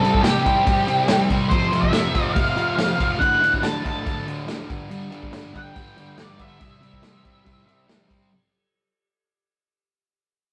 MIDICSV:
0, 0, Header, 1, 4, 480
1, 0, Start_track
1, 0, Tempo, 424328
1, 1714, Time_signature, 4, 2, 24, 8
1, 11908, End_track
2, 0, Start_track
2, 0, Title_t, "Lead electric guitar"
2, 0, Program_c, 0, 29
2, 0, Note_on_c, 0, 69, 97
2, 240, Note_on_c, 0, 67, 87
2, 286, Note_off_c, 0, 69, 0
2, 1410, Note_off_c, 0, 67, 0
2, 1684, Note_on_c, 0, 72, 96
2, 2044, Note_on_c, 0, 76, 98
2, 2070, Note_off_c, 0, 72, 0
2, 2635, Note_off_c, 0, 76, 0
2, 2639, Note_on_c, 0, 77, 97
2, 3110, Note_off_c, 0, 77, 0
2, 3124, Note_on_c, 0, 77, 91
2, 3608, Note_on_c, 0, 78, 109
2, 3633, Note_off_c, 0, 77, 0
2, 4066, Note_off_c, 0, 78, 0
2, 4112, Note_on_c, 0, 81, 104
2, 4344, Note_off_c, 0, 81, 0
2, 4358, Note_on_c, 0, 81, 113
2, 4802, Note_off_c, 0, 81, 0
2, 6296, Note_on_c, 0, 79, 118
2, 7027, Note_off_c, 0, 79, 0
2, 7031, Note_on_c, 0, 74, 82
2, 7237, Note_off_c, 0, 74, 0
2, 7256, Note_on_c, 0, 76, 107
2, 7480, Note_off_c, 0, 76, 0
2, 7494, Note_on_c, 0, 76, 91
2, 8880, Note_off_c, 0, 76, 0
2, 11908, End_track
3, 0, Start_track
3, 0, Title_t, "Distorted electric guitar"
3, 0, Program_c, 1, 30
3, 32, Note_on_c, 1, 48, 85
3, 38, Note_on_c, 1, 55, 106
3, 50, Note_on_c, 1, 60, 90
3, 253, Note_off_c, 1, 48, 0
3, 253, Note_off_c, 1, 55, 0
3, 266, Note_on_c, 1, 55, 99
3, 267, Note_on_c, 1, 48, 92
3, 276, Note_off_c, 1, 60, 0
3, 280, Note_on_c, 1, 60, 98
3, 493, Note_off_c, 1, 48, 0
3, 502, Note_off_c, 1, 55, 0
3, 506, Note_on_c, 1, 48, 81
3, 515, Note_on_c, 1, 55, 79
3, 520, Note_off_c, 1, 60, 0
3, 525, Note_on_c, 1, 60, 97
3, 728, Note_off_c, 1, 48, 0
3, 740, Note_off_c, 1, 55, 0
3, 742, Note_on_c, 1, 48, 95
3, 748, Note_off_c, 1, 60, 0
3, 754, Note_on_c, 1, 55, 104
3, 762, Note_on_c, 1, 60, 101
3, 979, Note_off_c, 1, 48, 0
3, 981, Note_off_c, 1, 55, 0
3, 984, Note_off_c, 1, 60, 0
3, 993, Note_on_c, 1, 48, 86
3, 995, Note_on_c, 1, 55, 88
3, 998, Note_on_c, 1, 60, 92
3, 1216, Note_off_c, 1, 48, 0
3, 1218, Note_off_c, 1, 55, 0
3, 1228, Note_off_c, 1, 60, 0
3, 1230, Note_on_c, 1, 48, 88
3, 1231, Note_on_c, 1, 55, 102
3, 1242, Note_on_c, 1, 60, 107
3, 1448, Note_off_c, 1, 48, 0
3, 1454, Note_off_c, 1, 55, 0
3, 1462, Note_on_c, 1, 48, 91
3, 1463, Note_off_c, 1, 60, 0
3, 1468, Note_on_c, 1, 55, 89
3, 1477, Note_on_c, 1, 60, 97
3, 1690, Note_off_c, 1, 48, 0
3, 1695, Note_on_c, 1, 41, 96
3, 1696, Note_off_c, 1, 55, 0
3, 1701, Note_off_c, 1, 60, 0
3, 1708, Note_on_c, 1, 48, 94
3, 1714, Note_on_c, 1, 53, 118
3, 1931, Note_off_c, 1, 41, 0
3, 1937, Note_off_c, 1, 48, 0
3, 1943, Note_off_c, 1, 53, 0
3, 1944, Note_on_c, 1, 41, 94
3, 1951, Note_on_c, 1, 48, 97
3, 1957, Note_on_c, 1, 53, 106
3, 2152, Note_off_c, 1, 41, 0
3, 2161, Note_off_c, 1, 48, 0
3, 2165, Note_on_c, 1, 41, 91
3, 2168, Note_off_c, 1, 53, 0
3, 2174, Note_on_c, 1, 48, 97
3, 2182, Note_on_c, 1, 53, 109
3, 2411, Note_off_c, 1, 41, 0
3, 2416, Note_off_c, 1, 48, 0
3, 2420, Note_off_c, 1, 53, 0
3, 2424, Note_on_c, 1, 41, 92
3, 2430, Note_on_c, 1, 48, 91
3, 2434, Note_on_c, 1, 53, 96
3, 2643, Note_off_c, 1, 41, 0
3, 2650, Note_off_c, 1, 48, 0
3, 2656, Note_on_c, 1, 41, 85
3, 2658, Note_off_c, 1, 53, 0
3, 2664, Note_on_c, 1, 48, 99
3, 2672, Note_on_c, 1, 53, 99
3, 2871, Note_off_c, 1, 41, 0
3, 2885, Note_off_c, 1, 48, 0
3, 2885, Note_on_c, 1, 41, 85
3, 2887, Note_off_c, 1, 53, 0
3, 2899, Note_on_c, 1, 48, 94
3, 2900, Note_on_c, 1, 53, 98
3, 3120, Note_off_c, 1, 41, 0
3, 3129, Note_off_c, 1, 48, 0
3, 3134, Note_on_c, 1, 41, 103
3, 3140, Note_off_c, 1, 53, 0
3, 3143, Note_on_c, 1, 48, 100
3, 3154, Note_on_c, 1, 53, 111
3, 3355, Note_off_c, 1, 41, 0
3, 3368, Note_off_c, 1, 48, 0
3, 3369, Note_on_c, 1, 41, 89
3, 3370, Note_off_c, 1, 53, 0
3, 3381, Note_on_c, 1, 48, 90
3, 3384, Note_on_c, 1, 53, 93
3, 3606, Note_off_c, 1, 41, 0
3, 3611, Note_on_c, 1, 38, 84
3, 3613, Note_off_c, 1, 48, 0
3, 3614, Note_off_c, 1, 53, 0
3, 3620, Note_on_c, 1, 45, 102
3, 3624, Note_on_c, 1, 50, 100
3, 3842, Note_off_c, 1, 38, 0
3, 3843, Note_off_c, 1, 45, 0
3, 3855, Note_on_c, 1, 38, 81
3, 3857, Note_on_c, 1, 45, 92
3, 3859, Note_off_c, 1, 50, 0
3, 3873, Note_on_c, 1, 50, 97
3, 4079, Note_off_c, 1, 38, 0
3, 4085, Note_off_c, 1, 45, 0
3, 4093, Note_on_c, 1, 38, 85
3, 4094, Note_off_c, 1, 50, 0
3, 4099, Note_on_c, 1, 45, 103
3, 4107, Note_on_c, 1, 50, 106
3, 4316, Note_off_c, 1, 38, 0
3, 4326, Note_off_c, 1, 45, 0
3, 4329, Note_on_c, 1, 38, 88
3, 4335, Note_off_c, 1, 50, 0
3, 4339, Note_on_c, 1, 45, 81
3, 4349, Note_on_c, 1, 50, 89
3, 4563, Note_off_c, 1, 38, 0
3, 4573, Note_off_c, 1, 45, 0
3, 4577, Note_on_c, 1, 38, 104
3, 4578, Note_off_c, 1, 50, 0
3, 4587, Note_on_c, 1, 45, 101
3, 4592, Note_on_c, 1, 50, 116
3, 4808, Note_off_c, 1, 38, 0
3, 4815, Note_off_c, 1, 45, 0
3, 4821, Note_on_c, 1, 38, 92
3, 4829, Note_off_c, 1, 50, 0
3, 4829, Note_on_c, 1, 45, 98
3, 4843, Note_on_c, 1, 50, 95
3, 5043, Note_off_c, 1, 38, 0
3, 5052, Note_off_c, 1, 45, 0
3, 5054, Note_off_c, 1, 50, 0
3, 5057, Note_on_c, 1, 38, 99
3, 5066, Note_on_c, 1, 45, 93
3, 5068, Note_on_c, 1, 50, 115
3, 5291, Note_off_c, 1, 38, 0
3, 5295, Note_off_c, 1, 45, 0
3, 5297, Note_off_c, 1, 50, 0
3, 5297, Note_on_c, 1, 43, 95
3, 5311, Note_on_c, 1, 50, 107
3, 5315, Note_on_c, 1, 55, 110
3, 5530, Note_off_c, 1, 43, 0
3, 5536, Note_off_c, 1, 50, 0
3, 5544, Note_on_c, 1, 43, 109
3, 5549, Note_on_c, 1, 50, 91
3, 5551, Note_off_c, 1, 55, 0
3, 5556, Note_on_c, 1, 55, 105
3, 5764, Note_off_c, 1, 43, 0
3, 5775, Note_off_c, 1, 50, 0
3, 5778, Note_on_c, 1, 43, 92
3, 5788, Note_off_c, 1, 55, 0
3, 5789, Note_on_c, 1, 50, 102
3, 5793, Note_on_c, 1, 55, 106
3, 5999, Note_off_c, 1, 43, 0
3, 6003, Note_off_c, 1, 50, 0
3, 6013, Note_on_c, 1, 43, 96
3, 6017, Note_on_c, 1, 50, 89
3, 6023, Note_off_c, 1, 55, 0
3, 6027, Note_on_c, 1, 55, 100
3, 6250, Note_off_c, 1, 43, 0
3, 6257, Note_off_c, 1, 50, 0
3, 6264, Note_on_c, 1, 43, 83
3, 6271, Note_on_c, 1, 50, 89
3, 6275, Note_off_c, 1, 55, 0
3, 6279, Note_on_c, 1, 55, 102
3, 6487, Note_off_c, 1, 43, 0
3, 6493, Note_off_c, 1, 50, 0
3, 6500, Note_on_c, 1, 43, 100
3, 6502, Note_off_c, 1, 55, 0
3, 6506, Note_on_c, 1, 50, 111
3, 6507, Note_on_c, 1, 55, 118
3, 6736, Note_off_c, 1, 43, 0
3, 6745, Note_off_c, 1, 50, 0
3, 6749, Note_on_c, 1, 43, 91
3, 6759, Note_on_c, 1, 50, 92
3, 6760, Note_off_c, 1, 55, 0
3, 6764, Note_on_c, 1, 55, 91
3, 6960, Note_off_c, 1, 43, 0
3, 6972, Note_off_c, 1, 50, 0
3, 6974, Note_on_c, 1, 43, 101
3, 6985, Note_off_c, 1, 55, 0
3, 6986, Note_on_c, 1, 50, 106
3, 6989, Note_on_c, 1, 55, 107
3, 7200, Note_off_c, 1, 43, 0
3, 7210, Note_off_c, 1, 50, 0
3, 7214, Note_on_c, 1, 43, 91
3, 7223, Note_on_c, 1, 50, 95
3, 7230, Note_off_c, 1, 55, 0
3, 7234, Note_on_c, 1, 55, 103
3, 7450, Note_off_c, 1, 43, 0
3, 7455, Note_off_c, 1, 50, 0
3, 7464, Note_on_c, 1, 48, 96
3, 7477, Note_off_c, 1, 55, 0
3, 7477, Note_on_c, 1, 55, 94
3, 7481, Note_on_c, 1, 60, 101
3, 7689, Note_off_c, 1, 48, 0
3, 7697, Note_off_c, 1, 55, 0
3, 7703, Note_on_c, 1, 48, 92
3, 7707, Note_off_c, 1, 60, 0
3, 7710, Note_on_c, 1, 55, 94
3, 7721, Note_on_c, 1, 60, 101
3, 7927, Note_off_c, 1, 48, 0
3, 7941, Note_off_c, 1, 55, 0
3, 7941, Note_on_c, 1, 48, 95
3, 7946, Note_off_c, 1, 60, 0
3, 7955, Note_on_c, 1, 55, 104
3, 7960, Note_on_c, 1, 60, 117
3, 8179, Note_off_c, 1, 48, 0
3, 8188, Note_off_c, 1, 55, 0
3, 8192, Note_on_c, 1, 48, 82
3, 8193, Note_off_c, 1, 60, 0
3, 8201, Note_on_c, 1, 55, 92
3, 8206, Note_on_c, 1, 60, 93
3, 8413, Note_off_c, 1, 48, 0
3, 8414, Note_off_c, 1, 55, 0
3, 8424, Note_off_c, 1, 60, 0
3, 8426, Note_on_c, 1, 48, 103
3, 8428, Note_on_c, 1, 55, 105
3, 8437, Note_on_c, 1, 60, 105
3, 8656, Note_off_c, 1, 55, 0
3, 8658, Note_off_c, 1, 48, 0
3, 8667, Note_off_c, 1, 60, 0
3, 8669, Note_on_c, 1, 55, 84
3, 8672, Note_on_c, 1, 48, 86
3, 8680, Note_on_c, 1, 60, 89
3, 8887, Note_off_c, 1, 48, 0
3, 8895, Note_off_c, 1, 55, 0
3, 8901, Note_off_c, 1, 60, 0
3, 8901, Note_on_c, 1, 48, 88
3, 8909, Note_on_c, 1, 55, 105
3, 8915, Note_on_c, 1, 60, 110
3, 9122, Note_off_c, 1, 48, 0
3, 9132, Note_off_c, 1, 55, 0
3, 9135, Note_on_c, 1, 48, 87
3, 9136, Note_off_c, 1, 60, 0
3, 9146, Note_on_c, 1, 55, 90
3, 9149, Note_on_c, 1, 60, 98
3, 9371, Note_off_c, 1, 48, 0
3, 9376, Note_off_c, 1, 55, 0
3, 9378, Note_off_c, 1, 60, 0
3, 11908, End_track
4, 0, Start_track
4, 0, Title_t, "Drums"
4, 53, Note_on_c, 9, 49, 64
4, 163, Note_on_c, 9, 36, 100
4, 166, Note_off_c, 9, 49, 0
4, 273, Note_on_c, 9, 38, 124
4, 276, Note_off_c, 9, 36, 0
4, 277, Note_on_c, 9, 49, 84
4, 386, Note_off_c, 9, 38, 0
4, 390, Note_off_c, 9, 49, 0
4, 519, Note_on_c, 9, 36, 87
4, 520, Note_on_c, 9, 49, 68
4, 632, Note_off_c, 9, 36, 0
4, 634, Note_off_c, 9, 49, 0
4, 756, Note_on_c, 9, 36, 120
4, 757, Note_on_c, 9, 49, 85
4, 869, Note_off_c, 9, 36, 0
4, 870, Note_off_c, 9, 49, 0
4, 995, Note_on_c, 9, 49, 66
4, 1108, Note_off_c, 9, 49, 0
4, 1225, Note_on_c, 9, 38, 124
4, 1229, Note_on_c, 9, 49, 89
4, 1338, Note_off_c, 9, 38, 0
4, 1342, Note_off_c, 9, 49, 0
4, 1472, Note_on_c, 9, 49, 71
4, 1473, Note_on_c, 9, 36, 82
4, 1585, Note_off_c, 9, 49, 0
4, 1586, Note_off_c, 9, 36, 0
4, 1708, Note_on_c, 9, 49, 79
4, 1712, Note_on_c, 9, 36, 115
4, 1821, Note_off_c, 9, 49, 0
4, 1825, Note_off_c, 9, 36, 0
4, 1954, Note_on_c, 9, 49, 64
4, 2067, Note_off_c, 9, 49, 0
4, 2071, Note_on_c, 9, 36, 87
4, 2183, Note_on_c, 9, 38, 114
4, 2184, Note_off_c, 9, 36, 0
4, 2187, Note_on_c, 9, 49, 80
4, 2296, Note_off_c, 9, 38, 0
4, 2300, Note_off_c, 9, 49, 0
4, 2431, Note_on_c, 9, 36, 88
4, 2431, Note_on_c, 9, 49, 73
4, 2544, Note_off_c, 9, 36, 0
4, 2544, Note_off_c, 9, 49, 0
4, 2671, Note_on_c, 9, 36, 127
4, 2671, Note_on_c, 9, 49, 83
4, 2784, Note_off_c, 9, 49, 0
4, 2785, Note_off_c, 9, 36, 0
4, 2913, Note_on_c, 9, 49, 66
4, 3026, Note_off_c, 9, 49, 0
4, 3151, Note_on_c, 9, 38, 116
4, 3155, Note_on_c, 9, 49, 91
4, 3264, Note_off_c, 9, 38, 0
4, 3269, Note_off_c, 9, 49, 0
4, 3395, Note_on_c, 9, 36, 95
4, 3396, Note_on_c, 9, 49, 76
4, 3508, Note_off_c, 9, 36, 0
4, 3509, Note_off_c, 9, 49, 0
4, 3636, Note_on_c, 9, 36, 109
4, 3638, Note_on_c, 9, 49, 82
4, 3749, Note_off_c, 9, 36, 0
4, 3751, Note_off_c, 9, 49, 0
4, 3886, Note_on_c, 9, 49, 70
4, 3998, Note_on_c, 9, 36, 84
4, 4000, Note_off_c, 9, 49, 0
4, 4109, Note_on_c, 9, 38, 117
4, 4111, Note_off_c, 9, 36, 0
4, 4113, Note_on_c, 9, 49, 96
4, 4222, Note_off_c, 9, 38, 0
4, 4227, Note_off_c, 9, 49, 0
4, 4360, Note_on_c, 9, 36, 91
4, 4364, Note_on_c, 9, 49, 67
4, 4473, Note_off_c, 9, 36, 0
4, 4477, Note_off_c, 9, 49, 0
4, 4598, Note_on_c, 9, 36, 122
4, 4599, Note_on_c, 9, 49, 92
4, 4711, Note_off_c, 9, 36, 0
4, 4712, Note_off_c, 9, 49, 0
4, 4840, Note_on_c, 9, 49, 68
4, 4954, Note_off_c, 9, 49, 0
4, 5072, Note_on_c, 9, 38, 114
4, 5076, Note_on_c, 9, 49, 84
4, 5185, Note_off_c, 9, 38, 0
4, 5190, Note_off_c, 9, 49, 0
4, 5317, Note_on_c, 9, 36, 112
4, 5318, Note_on_c, 9, 49, 63
4, 5430, Note_off_c, 9, 36, 0
4, 5431, Note_off_c, 9, 49, 0
4, 5556, Note_on_c, 9, 49, 83
4, 5669, Note_off_c, 9, 49, 0
4, 5792, Note_on_c, 9, 49, 65
4, 5905, Note_off_c, 9, 49, 0
4, 5916, Note_on_c, 9, 36, 96
4, 6029, Note_off_c, 9, 36, 0
4, 6029, Note_on_c, 9, 38, 118
4, 6033, Note_on_c, 9, 49, 89
4, 6142, Note_off_c, 9, 38, 0
4, 6146, Note_off_c, 9, 49, 0
4, 6278, Note_on_c, 9, 36, 84
4, 6282, Note_on_c, 9, 49, 67
4, 6392, Note_off_c, 9, 36, 0
4, 6395, Note_off_c, 9, 49, 0
4, 6514, Note_on_c, 9, 49, 91
4, 6517, Note_on_c, 9, 36, 116
4, 6627, Note_off_c, 9, 49, 0
4, 6630, Note_off_c, 9, 36, 0
4, 6760, Note_on_c, 9, 49, 73
4, 6873, Note_off_c, 9, 49, 0
4, 6989, Note_on_c, 9, 38, 118
4, 6994, Note_on_c, 9, 49, 93
4, 7102, Note_off_c, 9, 38, 0
4, 7107, Note_off_c, 9, 49, 0
4, 7231, Note_on_c, 9, 49, 75
4, 7237, Note_on_c, 9, 36, 85
4, 7345, Note_off_c, 9, 49, 0
4, 7350, Note_off_c, 9, 36, 0
4, 7472, Note_on_c, 9, 49, 87
4, 7477, Note_on_c, 9, 36, 111
4, 7585, Note_off_c, 9, 49, 0
4, 7590, Note_off_c, 9, 36, 0
4, 7723, Note_on_c, 9, 49, 69
4, 7836, Note_off_c, 9, 49, 0
4, 7840, Note_on_c, 9, 36, 89
4, 7951, Note_on_c, 9, 38, 116
4, 7954, Note_off_c, 9, 36, 0
4, 7955, Note_on_c, 9, 49, 97
4, 8064, Note_off_c, 9, 38, 0
4, 8068, Note_off_c, 9, 49, 0
4, 8200, Note_on_c, 9, 49, 69
4, 8203, Note_on_c, 9, 36, 91
4, 8313, Note_off_c, 9, 49, 0
4, 8316, Note_off_c, 9, 36, 0
4, 8442, Note_on_c, 9, 49, 85
4, 8444, Note_on_c, 9, 36, 114
4, 8555, Note_off_c, 9, 49, 0
4, 8557, Note_off_c, 9, 36, 0
4, 8693, Note_on_c, 9, 49, 68
4, 8806, Note_off_c, 9, 49, 0
4, 8930, Note_on_c, 9, 38, 117
4, 8934, Note_on_c, 9, 49, 91
4, 9043, Note_off_c, 9, 38, 0
4, 9048, Note_off_c, 9, 49, 0
4, 9167, Note_on_c, 9, 36, 89
4, 9172, Note_on_c, 9, 49, 71
4, 9280, Note_off_c, 9, 36, 0
4, 9285, Note_off_c, 9, 49, 0
4, 11908, End_track
0, 0, End_of_file